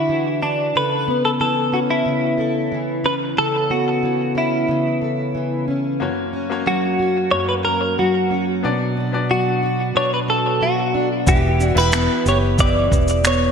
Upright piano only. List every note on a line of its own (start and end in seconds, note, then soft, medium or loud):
6.00 6.34 A#3 medium
6.00 6.35 C#4 medium
6.00 6.35 F#4 medium
6.00 6.35 C#5 medium
6.50 7.07 A#3 medium
6.50 7.07 C#4 medium
6.50 7.07 F#4 medium
6.50 7.08 C#5 medium
7.32 8.23 A#3 medium
7.32 8.23 C#4 medium
7.32 8.23 F#4 medium
7.32 8.24 C#5 medium
8.63 8.97 B3 medium
8.63 8.98 D4 medium
8.63 8.98 F#4 medium
8.63 8.98 D5 medium
9.12 9.70 B3 medium
9.12 9.70 D4 medium
9.12 9.70 F#4 medium
9.12 9.71 D5 medium
9.95 10.86 B3 medium
9.95 10.86 D4 medium
9.95 10.87 F#4 medium
9.95 10.87 D5 medium
11.26 11.61 B3 medium
11.26 11.61 E4 medium
11.26 11.61 G4 medium
11.26 11.62 E5 medium
11.75 12.32 B3 medium
11.75 12.33 E4 medium
11.75 12.33 G4 medium
11.75 12.33 E5 medium
12.57 13.49 B3 medium
12.57 13.49 E4 soft
12.57 13.49 G4 medium
12.57 12.66 D#5 medium
12.66 13.52 E5 medium